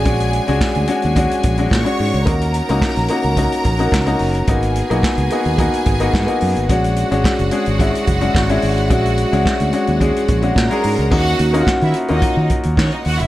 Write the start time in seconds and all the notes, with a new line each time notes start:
Already playing: G#3 C#4 D4 F#4 G#4 G#5
0.05 A#1 G#3 C#4 D4 F#4, kick, closed hi-hat
0.20 closed hi-hat
0.33 closed hi-hat
0.47 C#2 G#3 C#4 D4 F#4, closed hi-hat
0.61 kick, snare, clap
0.75 D2, closed hi-hat
0.87 G#3 C#4 D4 F#4, closed hi-hat
1.02 D#2, closed hi-hat
1.16 G#3 C#4 D4 F#4, kick, closed hi-hat
1.31 closed hi-hat
1.43 A#1, kick, closed hi-hat
1.57 G#3 C#4 D4 F#4, closed hi-hat
1.71 A#2 C#5 C#6, kick, snare, clap
1.84 G#3 C#4 D4 F#4, closed hi-hat
1.99 G#2, open hi-hat
2.14 C#2, closed hi-hat
2.25 D#2 A#3 C#4 D#4 F#4 A#4 A#5, kick, closed hi-hat
2.41 closed hi-hat
2.54 closed hi-hat
2.69 C#2 A#3 C#4 D#4 F#4, closed hi-hat
2.82 kick, snare, clap
2.96 A#1, snare, closed hi-hat
3.08 A#3 C#4 D#4 F#4, closed hi-hat
3.23 C#2, closed hi-hat
3.37 A#3 C#4 D#4 F#4, kick, closed hi-hat
3.52 closed hi-hat
3.65 A#1, kick, closed hi-hat
3.79 A#3 C#4 D#4 F#4, closed hi-hat
3.92 C#2, kick, snare, clap
4.06 A#3 C#4 D#4 F#4, closed hi-hat
4.19 F#1, open hi-hat
4.35 closed hi-hat
4.47 G#1 A#3 B3 D#4 F#4 G#4 G#5, kick, closed hi-hat
4.62 closed hi-hat
4.75 closed hi-hat
4.90 B1 A#3 B3 D#4 F#4, closed hi-hat
5.03 kick, snare, clap
5.18 C#2, closed hi-hat
5.30 A#3 B3 D#4 F#4, closed hi-hat
5.45 D#2, closed hi-hat
5.58 A#3 B3 D#4 F#4, kick, closed hi-hat
5.74 closed hi-hat
5.86 G#1, kick, closed hi-hat
6.00 A#3 B3 D#4 F#4, closed hi-hat
6.14 G#2, kick, snare, clap
6.27 A#3 B3 D#4 F#4, closed hi-hat
6.41 F#2, open hi-hat
6.56 G#1, closed hi-hat
6.69 A#1 G#3 C#4 D4 F#4 F#5, kick, closed hi-hat
6.84 closed hi-hat
6.96 closed hi-hat
7.11 G#1 G#3 C#4 D4 F#4, closed hi-hat
7.24 kick, snare, clap
7.39 F#1, closed hi-hat
7.51 G#3 C#4 D4 G#4, closed hi-hat
7.66 G#1, closed hi-hat
7.79 G#3 C#4 D4 E4, kick, closed hi-hat
7.95 closed hi-hat
8.07 F#1, kick, closed hi-hat
8.21 G#3 C#4 D4 F#4, closed hi-hat
8.35 G#1, kick, snare, clap
8.49 G#3 C#4 D4 E4, closed hi-hat
8.62 G#1, open hi-hat
8.78 closed hi-hat
8.90 A#1 G#3 C#4 D4 F#4, kick, closed hi-hat
9.05 closed hi-hat
9.18 closed hi-hat
9.32 C#2 G#3 C#4 D4 F#4, closed hi-hat
9.46 kick, snare, clap
9.60 D2, closed hi-hat
9.73 G#3 C#4 D4 F#4, closed hi-hat
9.87 D#2, closed hi-hat
10.00 G#3 C#4 D4 G#4, kick, closed hi-hat
10.16 closed hi-hat
10.28 A#1, kick, closed hi-hat
10.42 G#3 C#4 D4 F#4, closed hi-hat
10.55 A#2 A#4 A#5, kick, snare, clap
10.70 G#3 C#4 D4 G#4, closed hi-hat
10.83 G#2, open hi-hat
10.99 C#2, closed hi-hat
11.11 D#2 A#3 C#4 D#4 F#4 F#5, kick, crash
11.39 D#2, closed hi-hat
11.53 A#3 C#4 D#4 F4, closed hi-hat
11.61 F#4
11.67 kick, snare, clap
11.81 D#3 E4 E5, closed hi-hat
11.94 closed hi-hat
12.08 D#2 A#3 C#4 D#4 F4 D#5, closed hi-hat
12.17 F#4
12.22 kick, closed hi-hat
12.37 D#3
12.50 kick, closed hi-hat
12.63 D#2, closed hi-hat
12.77 D#3 C#4 C#5, kick, snare, clap
12.92 D#4 D#5, closed hi-hat
13.05 D#2 F#4 F#5, open hi-hat
13.19 F#1 E4 E5, closed hi-hat